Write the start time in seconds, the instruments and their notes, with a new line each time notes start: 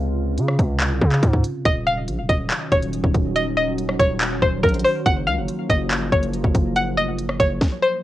Already playing: 808-style bass C#2, ambient pad C3 C#3 F4
0.38 808-style bass C#3, closed hi-hat
0.48 cross-stick
0.59 808-style bass C#2, kick, closed hi-hat
0.80 clap, closed hi-hat
0.91 808-style bass C2
1.02 808-style bass C#3, kick
1.12 clap
1.23 808-style bass G#2, kick, closed hi-hat
1.33 kick
1.44 closed hi-hat
1.65 808-style bass D#1, ambient pad D#3 F#3 C#4, synth pluck D#5, kick, closed hi-hat
1.87 synth pluck F5
2.08 808-style bass A#1, closed hi-hat
2.19 808-style bass D#1
2.29 808-style bass D#1, synth pluck D#5, kick, closed hi-hat
2.50 clap, closed hi-hat
2.72 808-style bass D#1, synth pluck C#5, kick, closed hi-hat
2.82 closed hi-hat
2.93 closed hi-hat
3.04 808-style bass D#1, kick
3.14 808-style bass D#1, kick, closed hi-hat
3.36 synth pluck D#5, closed hi-hat
3.57 synth pluck D#5
3.78 closed hi-hat
3.89 cross-stick
3.99 808-style bass D#1, synth pluck C#5, kick, closed hi-hat
4.21 clap, closed hi-hat
4.42 808-style bass D#1, synth pluck C5, kick
4.63 808-style bass A#1, synth pluck A#4, kick, closed hi-hat
4.69 closed hi-hat
4.74 closed hi-hat
4.79 closed hi-hat
4.84 synth pluck C5, open hi-hat
5.06 808-style bass F#1, ambient pad F3 A#3, synth pluck F#5, kick, closed hi-hat
5.27 808-style bass C#2, synth pluck F5
5.38 808-style bass F#1
5.48 closed hi-hat
5.70 808-style bass F#1, synth pluck D#5, kick, closed hi-hat
5.91 clap, closed hi-hat
6.12 808-style bass F#1, synth pluck C#5, kick, closed hi-hat
6.23 closed hi-hat
6.33 closed hi-hat
6.44 808-style bass F#1, kick
6.55 808-style bass F#1, kick, closed hi-hat
6.76 synth pluck F#5, closed hi-hat
6.97 808-style bass F1, synth pluck D#5
7.19 808-style bass F#1, closed hi-hat
7.29 cross-stick
7.40 808-style bass F#1, synth pluck C#5, kick, closed hi-hat
7.61 kick, snare
7.82 synth pluck C5